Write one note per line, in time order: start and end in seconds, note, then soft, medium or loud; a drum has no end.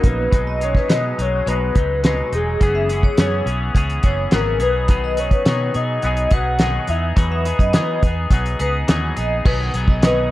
0.00 0.30 A#3 medium
0.00 0.33 A#3 medium
0.00 0.34 C#4 medium
0.00 0.34 D#4 medium
0.00 0.32 D#4 medium
0.00 0.33 F#4 loud
0.00 0.30 D#5 medium
0.00 0.30 B5 medium
0.00 kick medium
0.00 closed hi-hat medium
0.04 0.27 A#1 medium
0.04 0.32 F#3 medium
0.04 0.33 A#3 medium
0.04 0.62 B4 loud
0.32 0.78 B1 medium
0.32 0.60 B2 medium
0.32 0.61 F#3 medium
0.32 0.61 G#3 medium
0.32 0.59 D#4 medium
0.32 kick medium
0.32 closed hi-hat medium
0.47 0.60 D#5 medium
0.60 0.88 F#3 soft
0.60 0.89 G#3 soft
0.60 0.89 D#4 medium
0.60 0.92 C#5 medium
0.60 closed hi-hat medium
0.75 1.16 B4 medium
0.75 kick medium
0.75 snare soft
0.89 1.17 B2 medium
0.89 1.12 B2 medium
0.89 1.18 F#3 medium
0.89 1.18 G#3 medium
0.89 1.17 D#4 medium
0.89 1.23 D#5 loud
0.89 snare loud
0.89 closed hi-hat medium
1.18 1.41 B1 medium
1.18 1.46 F#3 soft
1.18 1.47 G#3 soft
1.18 1.46 D#4 soft
1.18 1.47 C#5 loud
1.18 closed hi-hat medium
1.47 1.69 B1 medium
1.47 1.75 B2 medium
1.47 1.75 F#3 medium
1.47 1.76 G#3 medium
1.47 1.74 D#4 medium
1.47 2.00 B4 medium
1.47 closed hi-hat medium
1.75 2.21 C#2 medium
1.75 2.04 F#3 soft
1.75 2.04 G#3 soft
1.75 2.03 D#4 soft
1.75 1.89 B4 medium
1.75 kick medium
1.75 closed hi-hat medium
2.04 2.32 B2 medium
2.04 2.33 F#3 medium
2.04 2.33 G#3 medium
2.04 2.32 D#4 medium
2.04 2.31 B4 medium
2.04 snare medium
2.04 closed hi-hat medium
2.32 2.55 E1 medium
2.32 2.62 G#3 soft
2.32 2.61 D#4 soft
2.32 3.44 G#4 medium
2.32 closed hi-hat medium
2.37 2.61 F#3 soft
2.61 3.07 F#1 loud
2.61 2.89 F#2 medium
2.61 2.89 C#3 medium
2.61 2.90 E3 medium
2.61 2.90 B3 medium
2.61 2.89 C#4 medium
2.61 2.88 G#4 medium
2.61 kick medium
2.61 closed hi-hat medium
2.75 2.88 E5 medium
2.89 3.19 B3 soft
2.89 3.18 C#4 soft
2.89 3.18 G#4 soft
2.89 closed hi-hat medium
2.93 3.18 E3 soft
3.03 3.44 C#5 medium
3.03 kick medium
3.17 3.41 F#2 medium
3.17 3.46 F#2 medium
3.17 3.47 C#3 medium
3.17 3.47 E3 medium
3.17 3.47 B3 medium
3.17 3.46 C#4 medium
3.17 3.45 G#4 medium
3.17 snare loud
3.17 closed hi-hat medium
3.46 3.69 B1 medium
3.46 3.73 E3 soft
3.46 3.74 B3 soft
3.46 3.75 C#4 soft
3.46 3.74 G#4 medium
3.46 closed hi-hat medium
3.74 3.98 C#2 medium
3.74 4.03 E3 medium
3.74 4.04 B3 medium
3.74 4.03 C#4 medium
3.74 4.03 G#4 medium
3.74 kick medium
3.74 closed hi-hat medium
3.90 closed hi-hat soft
4.03 4.26 F#1 medium
4.03 4.31 E3 soft
4.03 4.32 B3 medium
4.03 4.32 C#4 soft
4.03 4.32 G#4 medium
4.03 4.17 C#5 medium
4.03 kick medium
4.03 closed hi-hat medium
4.31 4.61 G#1 medium
4.31 4.60 F#2 medium
4.31 4.60 C#3 medium
4.31 4.61 E3 medium
4.31 4.61 B3 medium
4.31 4.61 C#4 medium
4.31 4.59 G#4 medium
4.31 4.59 A#4 medium
4.31 snare loud
4.31 closed hi-hat medium
4.60 5.29 B1 medium
4.60 4.88 F#3 soft
4.60 4.89 B3 soft
4.60 4.89 D#4 soft
4.60 4.89 G#4 soft
4.60 4.74 B4 medium
4.60 5.21 B4 loud
4.60 closed hi-hat medium
4.88 5.17 B2 medium
4.88 5.17 D#3 medium
4.88 5.18 F#3 medium
4.88 5.17 B3 medium
4.88 5.17 D#4 medium
4.88 5.16 G#4 medium
4.88 kick loud
4.88 closed hi-hat medium
5.04 5.17 D#5 medium
5.17 5.46 F#3 soft
5.17 5.46 B3 soft
5.17 5.46 D#4 soft
5.17 5.46 G#4 soft
5.17 5.77 C#5 loud
5.17 closed hi-hat medium
5.31 5.72 B4 medium
5.31 kick medium
5.31 closed hi-hat soft
5.46 5.69 B2 medium
5.46 5.74 B2 medium
5.46 5.75 D#3 medium
5.46 5.75 F#3 medium
5.46 5.75 B3 medium
5.46 5.75 D#4 medium
5.46 5.74 G#4 medium
5.46 snare loud
5.46 closed hi-hat medium
5.74 5.98 B2 medium
5.74 6.03 B3 soft
5.74 6.04 D#4 soft
5.74 6.03 G#4 soft
5.74 6.35 D#5 loud
5.74 closed hi-hat medium
5.78 6.02 F#3 soft
6.02 6.26 B1 medium
6.02 6.31 F#3 soft
6.02 6.32 B3 medium
6.02 6.31 D#4 medium
6.02 6.30 G#4 medium
6.02 closed hi-hat medium
6.17 closed hi-hat soft
6.31 6.77 B1 medium
6.31 6.59 F#3 soft
6.31 6.60 B3 soft
6.31 6.59 D#4 soft
6.31 6.60 G#4 soft
6.31 6.45 B4 medium
6.31 6.91 F#5 loud
6.31 kick medium
6.31 closed hi-hat medium
6.59 6.88 B2 medium
6.59 6.89 D#3 medium
6.59 6.89 F#3 medium
6.59 6.89 B3 medium
6.59 6.89 D#4 medium
6.59 6.88 G#4 medium
6.59 snare loud
6.59 closed hi-hat medium
6.88 7.11 E2 medium
6.88 7.17 D#4 soft
6.88 7.17 G#4 soft
6.88 7.17 E5 medium
6.88 closed hi-hat medium
6.92 7.16 B3 soft
7.16 7.51 E2 medium
7.16 7.45 E3 medium
7.16 7.46 F#3 medium
7.16 7.46 B3 medium
7.16 7.46 D#4 medium
7.16 7.45 G#4 medium
7.16 8.85 B4 medium
7.16 kick medium
7.16 closed hi-hat medium
7.32 7.45 E5 medium
7.45 7.74 B3 soft
7.45 7.74 D#4 soft
7.45 7.74 G#4 medium
7.45 closed hi-hat medium
7.59 7.76 F#2 medium
7.59 8.00 D#5 medium
7.59 kick medium
7.59 closed hi-hat soft
7.73 8.02 E3 medium
7.73 7.97 E3 medium
7.73 8.02 F#3 medium
7.73 8.03 B3 medium
7.73 8.03 D#4 medium
7.73 8.02 G#4 medium
7.73 snare loud
7.73 closed hi-hat medium
8.03 8.26 E2 medium
8.03 8.32 D#4 soft
8.03 8.32 G#4 medium
8.03 kick medium
8.03 closed hi-hat medium
8.07 8.31 B3 soft
8.30 8.54 B1 medium
8.30 8.60 F#3 medium
8.30 8.60 B3 medium
8.30 8.60 D#4 medium
8.30 8.58 G#4 medium
8.30 kick medium
8.30 closed hi-hat medium
8.46 closed hi-hat soft
8.59 8.83 C#2 medium
8.59 8.88 B3 soft
8.59 8.89 D#4 soft
8.59 8.88 G#4 soft
8.59 8.74 B4 medium
8.59 closed hi-hat medium
8.88 9.11 D#2 medium
8.88 9.17 E3 medium
8.88 9.17 F#3 medium
8.88 9.17 B3 medium
8.88 9.17 D#4 medium
8.88 9.15 G#4 medium
8.88 snare loud
8.88 closed hi-hat medium
9.16 9.40 A#1 medium
9.16 9.45 B3 soft
9.16 9.45 D#4 soft
9.16 9.45 G#4 medium
9.16 9.31 D#5 medium
9.16 closed hi-hat medium
9.45 9.68 B1 loud
9.45 9.74 B2 medium
9.45 9.74 D#3 medium
9.45 9.74 F#3 medium
9.45 9.74 B3 medium
9.45 9.74 D#4 medium
9.45 9.73 G#4 medium
9.45 9.59 B4 medium
9.45 kick loud
9.45 crash medium
9.74 10.31 B1 loud
9.74 10.02 F#3 soft
9.74 10.03 B3 medium
9.74 10.03 D#4 soft
9.74 10.03 G#4 medium
9.74 closed hi-hat medium
9.88 10.02 D#5 medium
9.88 kick medium
10.02 10.31 B2 medium
10.02 10.31 D#3 medium
10.02 10.31 F#3 medium
10.02 10.31 B3 medium
10.02 10.30 D#4 medium
10.02 10.29 G#4 medium
10.02 10.31 B4 medium
10.02 10.30 D#5 medium
10.02 snare loud
10.02 closed hi-hat loud